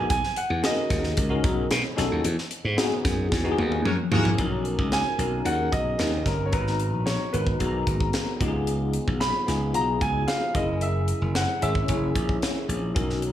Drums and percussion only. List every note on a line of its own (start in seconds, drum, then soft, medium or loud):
0.10 kick loud
0.10 closed hi-hat loud
0.24 snare soft
0.36 closed hi-hat medium
0.64 snare loud
0.64 closed hi-hat medium
0.90 kick medium
0.90 snare soft
0.90 closed hi-hat medium
1.04 snare soft
1.17 kick medium
1.17 closed hi-hat loud
1.44 kick loud
1.44 closed hi-hat medium
1.71 snare loud
1.71 closed hi-hat loud
1.98 snare soft
1.98 closed hi-hat medium
2.25 closed hi-hat medium
2.38 snare soft
2.51 closed hi-hat medium
2.78 snare loud
2.78 closed hi-hat medium
3.05 kick medium
3.05 snare soft
3.05 closed hi-hat medium
3.32 kick medium
3.32 snare medium
3.58 high tom medium
3.72 high tom medium
3.85 mid tom loud
4.12 floor tom loud
4.25 floor tom medium
4.38 kick medium
4.38 closed hi-hat medium
4.65 closed hi-hat medium
4.79 kick medium
4.92 snare loud
4.92 closed hi-hat medium
5.19 closed hi-hat medium
5.46 closed hi-hat medium
5.73 kick medium
5.73 closed hi-hat medium
5.99 snare loud
5.99 closed hi-hat medium
6.26 kick medium
6.26 snare soft
6.26 closed hi-hat medium
6.53 kick medium
6.53 closed hi-hat medium
6.67 snare soft
6.79 closed hi-hat medium
7.07 snare loud
7.07 closed hi-hat medium
7.34 closed hi-hat medium
7.47 kick medium
7.60 kick medium
7.60 closed hi-hat medium
7.87 kick medium
7.87 closed hi-hat medium
8.00 kick medium
8.13 snare loud
8.13 closed hi-hat medium
8.41 kick medium
8.41 closed hi-hat medium
8.67 closed hi-hat medium
8.93 closed hi-hat medium
9.08 kick medium
9.21 snare loud
9.21 closed hi-hat medium
9.48 snare soft
9.48 closed hi-hat medium
9.74 closed hi-hat medium
10.01 kick medium
10.01 closed hi-hat medium
10.28 snare loud
10.28 closed hi-hat medium
10.55 kick loud
10.55 closed hi-hat medium
10.81 closed hi-hat medium
11.08 closed hi-hat medium
11.35 snare loud
11.35 closed hi-hat medium
11.62 closed hi-hat medium
11.75 kick medium
11.88 kick medium
11.88 closed hi-hat medium
12.15 kick medium
12.15 closed hi-hat medium
12.29 kick medium
12.42 snare loud
12.42 closed hi-hat medium
12.70 closed hi-hat medium
12.96 kick loud
12.96 closed hi-hat medium
13.10 snare soft
13.22 closed hi-hat medium